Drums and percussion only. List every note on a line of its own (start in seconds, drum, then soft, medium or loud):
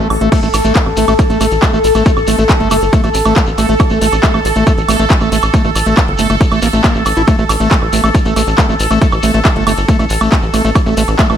0.10 open hi-hat medium
0.10 high woodblock medium
0.21 closed hi-hat medium
0.32 kick loud
0.32 closed hi-hat medium
0.32 ride medium
0.32 crash medium
0.32 high woodblock soft
0.32 shekere medium
0.43 shekere soft
0.54 open hi-hat loud
0.54 ride medium
0.54 high woodblock medium
0.54 shekere loud
0.64 closed hi-hat medium
0.64 shekere soft
0.75 kick loud
0.75 clap loud
0.75 closed hi-hat medium
0.75 ride medium
0.75 shekere medium
0.86 high woodblock soft
0.97 open hi-hat medium
0.97 ride medium
0.97 shekere medium
1.08 closed hi-hat medium
1.08 high woodblock medium
1.08 shekere soft
1.19 kick loud
1.19 closed hi-hat medium
1.19 ride medium
1.19 shekere soft
1.30 closed hi-hat soft
1.30 shekere soft
1.41 open hi-hat loud
1.41 ride medium
1.41 high woodblock soft
1.41 shekere loud
1.51 closed hi-hat medium
1.51 shekere soft
1.62 kick loud
1.62 clap loud
1.62 closed hi-hat medium
1.62 ride medium
1.62 high woodblock medium
1.62 shekere medium
1.74 shekere soft
1.84 open hi-hat medium
1.84 ride medium
1.84 shekere medium
1.95 closed hi-hat medium
1.95 high woodblock soft
1.95 shekere soft
2.06 kick loud
2.06 closed hi-hat medium
2.06 ride medium
2.06 shekere medium
2.17 high woodblock medium
2.17 shekere soft
2.27 open hi-hat loud
2.27 ride medium
2.27 shekere medium
2.39 closed hi-hat medium
2.39 shekere soft
2.49 kick loud
2.49 clap loud
2.49 closed hi-hat medium
2.49 ride medium
2.49 high woodblock soft
2.49 shekere medium
2.60 closed hi-hat soft
2.71 open hi-hat loud
2.71 ride medium
2.71 high woodblock medium
2.71 shekere medium
2.82 closed hi-hat medium
2.82 shekere soft
2.93 kick loud
2.93 closed hi-hat medium
2.93 ride medium
2.93 shekere medium
3.03 closed hi-hat soft
3.03 high woodblock soft
3.03 shekere soft
3.14 open hi-hat loud
3.14 ride medium
3.14 shekere loud
3.25 closed hi-hat medium
3.25 high woodblock medium
3.25 shekere soft
3.36 kick loud
3.36 clap loud
3.36 closed hi-hat medium
3.36 ride medium
3.36 shekere medium
3.46 shekere soft
3.58 open hi-hat medium
3.58 ride medium
3.58 high woodblock soft
3.58 shekere loud
3.69 closed hi-hat medium
3.69 shekere soft
3.79 kick loud
3.79 closed hi-hat medium
3.79 ride medium
3.79 high woodblock medium
3.79 shekere medium
3.90 shekere soft
4.02 open hi-hat loud
4.02 ride medium
4.02 shekere loud
4.12 closed hi-hat medium
4.12 high woodblock soft
4.12 shekere soft
4.23 kick loud
4.23 clap loud
4.23 closed hi-hat medium
4.23 ride medium
4.23 shekere medium
4.34 high woodblock medium
4.45 open hi-hat loud
4.45 ride medium
4.45 shekere medium
4.56 closed hi-hat medium
4.56 shekere soft
4.67 kick loud
4.67 closed hi-hat medium
4.67 ride medium
4.67 high woodblock soft
4.67 shekere medium
4.78 closed hi-hat soft
4.78 shekere soft
4.88 open hi-hat loud
4.88 ride medium
4.88 high woodblock medium
4.88 shekere medium
4.99 closed hi-hat soft
4.99 shekere soft
5.10 kick loud
5.10 clap loud
5.10 closed hi-hat medium
5.10 ride medium
5.10 shekere medium
5.21 high woodblock soft
5.21 shekere soft
5.32 open hi-hat medium
5.32 ride medium
5.32 shekere medium
5.43 closed hi-hat medium
5.43 high woodblock medium
5.43 shekere soft
5.54 kick loud
5.54 closed hi-hat medium
5.54 ride medium
5.54 shekere medium
5.64 shekere soft
5.75 open hi-hat loud
5.75 ride medium
5.75 high woodblock soft
5.75 shekere loud
5.86 closed hi-hat medium
5.86 shekere soft
5.97 kick loud
5.97 clap loud
5.97 closed hi-hat medium
5.97 ride medium
5.97 high woodblock medium
5.97 shekere medium
6.08 closed hi-hat soft
6.18 open hi-hat medium
6.18 ride medium
6.18 shekere loud
6.30 closed hi-hat medium
6.30 high woodblock soft
6.30 shekere soft
6.41 kick loud
6.41 closed hi-hat medium
6.41 ride medium
6.41 shekere medium
6.51 closed hi-hat soft
6.51 high woodblock medium
6.51 shekere soft
6.62 open hi-hat loud
6.62 ride medium
6.62 shekere loud
6.73 closed hi-hat soft
6.73 shekere soft
6.84 kick loud
6.84 clap loud
6.84 closed hi-hat medium
6.84 ride medium
6.84 high woodblock soft
6.84 shekere medium
6.95 shekere soft
7.06 open hi-hat medium
7.06 ride medium
7.06 high woodblock medium
7.06 shekere medium
7.17 closed hi-hat medium
7.17 shekere soft
7.28 kick loud
7.28 closed hi-hat medium
7.28 ride medium
7.28 high woodblock soft
7.28 shekere medium
7.38 shekere soft
7.49 open hi-hat loud
7.49 ride medium
7.49 high woodblock medium
7.49 shekere medium
7.60 closed hi-hat medium
7.60 shekere soft
7.71 kick loud
7.71 clap loud
7.71 closed hi-hat medium
7.71 ride medium
7.71 shekere medium
7.82 high woodblock soft
7.93 open hi-hat medium
7.93 ride medium
7.93 shekere medium
8.04 closed hi-hat medium
8.04 high woodblock medium
8.04 shekere soft
8.15 kick loud
8.15 closed hi-hat medium
8.15 ride medium
8.15 shekere medium
8.25 closed hi-hat soft
8.25 shekere soft
8.36 open hi-hat loud
8.36 ride medium
8.36 high woodblock soft
8.36 shekere medium
8.47 closed hi-hat soft
8.47 shekere soft
8.58 kick loud
8.58 clap loud
8.58 closed hi-hat medium
8.58 ride medium
8.58 high woodblock medium
8.58 shekere soft
8.70 shekere soft
8.80 open hi-hat medium
8.80 ride medium
8.80 shekere medium
8.91 closed hi-hat medium
8.91 high woodblock soft
8.91 shekere soft
9.02 kick loud
9.02 closed hi-hat medium
9.02 ride medium
9.02 shekere soft
9.12 high woodblock medium
9.12 shekere soft
9.23 open hi-hat loud
9.23 ride medium
9.23 shekere loud
9.34 closed hi-hat medium
9.34 shekere soft
9.45 kick loud
9.45 clap loud
9.45 closed hi-hat medium
9.45 ride medium
9.45 high woodblock soft
9.45 shekere medium
9.56 closed hi-hat soft
9.67 open hi-hat medium
9.67 ride medium
9.67 high woodblock medium
9.67 shekere medium
9.77 closed hi-hat medium
9.77 shekere soft
9.88 kick loud
9.88 closed hi-hat medium
9.88 ride medium
9.88 shekere medium
9.99 closed hi-hat soft
9.99 high woodblock soft
9.99 shekere soft
10.10 open hi-hat loud
10.10 ride medium
10.10 shekere medium
10.21 closed hi-hat medium
10.21 high woodblock medium
10.21 shekere soft
10.31 kick loud
10.31 clap loud
10.31 closed hi-hat medium
10.31 ride medium
10.31 shekere soft
10.42 shekere soft
10.54 open hi-hat medium
10.54 ride medium
10.54 high woodblock soft
10.54 shekere medium
10.65 closed hi-hat medium
10.65 shekere soft
10.75 kick loud
10.75 closed hi-hat medium
10.75 ride medium
10.75 high woodblock medium
10.75 shekere soft
10.86 shekere soft
10.97 open hi-hat loud
10.97 ride medium
10.97 shekere medium
11.07 closed hi-hat medium
11.07 high woodblock soft
11.07 shekere soft
11.19 kick loud
11.19 clap loud
11.19 closed hi-hat medium
11.19 ride medium
11.19 shekere soft
11.30 high woodblock medium